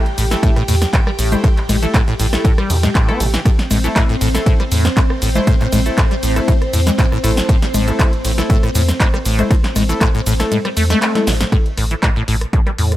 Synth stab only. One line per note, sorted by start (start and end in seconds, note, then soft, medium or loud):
0.31 0.55 A3 medium
0.31 0.55 E4 medium
0.31 0.55 A4 medium
1.32 1.47 A3 medium
1.32 1.47 E4 medium
1.32 1.47 C5 loud
1.82 1.97 A3 medium
1.82 1.97 E4 medium
1.82 1.97 A4 medium
2.33 2.47 A3 medium
2.33 2.47 E4 medium
2.33 2.47 A4 medium
3.08 3.23 A3 medium
3.08 3.23 E4 medium
3.08 3.23 A4 medium
3.84 4.08 A3 medium
3.84 4.08 E4 medium
3.84 4.08 A4 medium
4.34 4.59 A3 medium
4.34 4.59 E4 medium
4.34 4.59 A4 medium
5.35 5.50 A3 medium
5.35 5.50 E4 medium
5.35 5.50 C5 loud
5.86 6.00 A3 medium
5.86 6.00 E4 medium
5.86 6.00 A4 medium
6.36 6.51 A3 medium
6.36 6.51 E4 medium
6.36 6.51 A4 medium
7.24 7.48 A3 medium
7.24 7.48 E4 medium
7.24 7.48 A4 medium
7.88 8.12 A3 medium
7.88 8.12 E4 medium
7.88 8.12 A4 medium
8.38 8.62 A3 medium
8.38 8.62 E4 medium
8.38 8.62 A4 medium
9.39 9.53 A3 medium
9.39 9.53 E4 medium
9.39 9.53 C5 loud
9.89 10.04 A3 medium
9.89 10.04 E4 medium
9.89 10.04 A4 medium
10.40 10.54 A3 medium
10.40 10.54 E4 medium
10.40 10.54 A4 medium
11.15 11.30 A3 medium
11.15 11.30 E4 medium
11.15 11.30 A4 medium